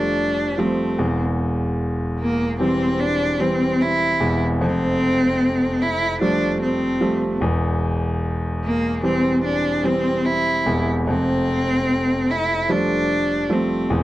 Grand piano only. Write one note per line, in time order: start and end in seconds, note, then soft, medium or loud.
0.00 0.95 F1 medium
0.00 0.95 F2 medium
0.00 0.55 F3 soft
0.00 0.56 G3 soft
0.00 0.56 A3 medium
0.58 0.97 F3 soft
0.58 0.97 G3 soft
0.58 0.98 A3 soft
0.99 4.17 E1 medium
0.99 4.17 E2 medium
2.60 3.38 E3 medium
2.60 3.38 G3 soft
2.60 3.38 C4 medium
3.40 4.18 E3 medium
3.40 4.18 G3 soft
3.40 4.18 C4 medium
4.20 4.58 E1 medium
4.20 4.59 E2 medium
4.61 7.37 F1 medium
4.61 7.37 F2 medium
6.21 6.98 F3 medium
6.21 6.98 G3 soft
6.21 6.98 A3 medium
7.01 7.39 F3 soft
7.01 7.40 G3 soft
7.01 7.40 A3 medium
7.41 10.62 E1 medium
7.41 10.63 E2 medium
9.03 9.82 E3 soft
9.03 9.82 G3 soft
9.03 9.82 C4 medium
9.83 10.63 E3 soft
9.83 10.64 G3 soft
9.83 10.64 C4 medium
10.66 11.04 E1 medium
10.66 11.06 E2 medium
11.07 13.87 F1 medium
11.07 13.87 F2 medium
12.69 13.48 F3 medium
12.69 13.48 G3 soft
12.69 13.48 A3 medium
13.49 13.89 F3 soft
13.49 13.89 G3 soft
13.49 13.89 A3 medium
13.90 14.03 E1 medium
13.90 14.03 E2 medium